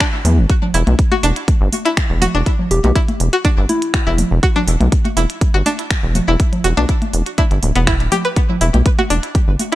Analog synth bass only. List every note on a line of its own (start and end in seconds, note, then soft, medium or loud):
0.25 0.39 E2 medium
0.38 0.46 G1 loud
0.74 0.83 E1 loud
0.87 0.95 B1 medium
1.23 1.32 E1 medium
1.61 1.69 G1 medium
2.10 2.27 E1 medium
2.35 2.43 E1 medium
2.71 2.80 E1 loud
2.84 2.92 B1 loud
3.20 3.29 E1 medium
3.58 3.66 G1 medium
4.07 4.23 E1 medium
4.31 4.39 E1 medium
4.68 4.77 E1 loud
4.80 4.89 B1 medium
5.17 5.26 E1 medium
5.54 5.62 G1 loud
6.03 6.20 E1 loud
6.28 6.36 E1 medium
6.64 6.73 E1 loud
6.77 6.85 B1 medium
7.14 7.23 E1 medium
7.51 7.59 G1 loud
7.63 7.72 D1 loud
7.76 8.02 E1 medium
8.00 8.08 D1 medium
8.61 8.70 E1 loud
8.74 8.82 B1 medium
9.10 9.19 E1 medium
9.48 9.56 G1 medium